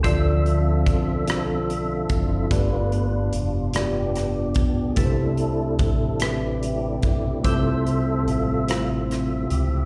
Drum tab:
HH |xxxxxx|xxxxxx|xxxxxx|xxxxxx|
SD |---r--|---rr-|---r--|---rr-|
BD |o-o--o|o----o|o-o--o|o-----|